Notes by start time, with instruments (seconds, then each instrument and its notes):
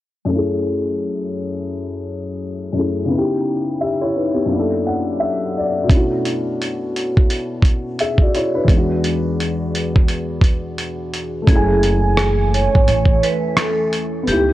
0.25 upright piano F#2 A3
0.31 upright piano C#4 E4
0.38 upright piano G#4
2.73 upright piano F#2 A3 C#4
2.78 upright piano E4 G#4
3.05 upright piano C#3 B3
3.12 upright piano D#4 E4
3.18 upright piano G4
3.81 upright piano G4 E5
4.02 upright piano E4 C#5
4.16 upright piano D#4 B4
4.34 upright piano B3 G4
4.46 upright piano F#2 A#3
4.53 upright piano D4 E4
4.59 upright piano A4
4.87 upright piano F#5
5.20 upright piano E5
5.57 upright piano D5
5.84 upright piano B2 A3
5.89 upright piano C#4 D4, kick, closed hi-hat
5.94 upright piano E4 F#4
6.25 closed hi-hat
6.62 closed hi-hat
6.96 closed hi-hat
7.17 kick
7.30 closed hi-hat
7.62 kick, closed hi-hat
7.99 upright piano G#4 E5, closed hi-hat
8.18 upright piano D5, kick
8.22 upright piano F#4
8.35 upright piano E4 C#5, closed hi-hat
8.55 upright piano D4 B4
8.64 upright piano E2 G#3, kick
8.69 upright piano B3, closed hi-hat
8.74 upright piano D4 F#4
9.04 closed hi-hat
9.40 closed hi-hat
9.75 closed hi-hat
9.96 kick
10.08 closed hi-hat
10.41 kick, closed hi-hat
10.78 closed hi-hat
11.14 closed hi-hat
11.42 upright piano A3
11.46 upright bass F#1, ambient pad E3 A3 G#5, upright piano C#4, vibraphone G#4, kick, closed hi-hat
11.51 upright piano E4
11.56 upright piano G#5
11.83 closed hi-hat
12.17 cross-stick, closed hi-hat
12.54 vibraphone C#5, closed hi-hat
12.75 upright bass G#1, kick
12.88 upright bass A1, vibraphone C#5, closed hi-hat
13.05 kick
13.23 vibraphone B4, closed hi-hat
13.57 vibraphone A4, cross-stick, closed hi-hat
13.93 closed hi-hat
14.23 ambient pad C#3 E3 B3, upright piano B3
14.27 upright bass C#2, upright piano D#4, vibraphone G4, closed hi-hat
14.32 upright piano E4
14.36 upright piano G4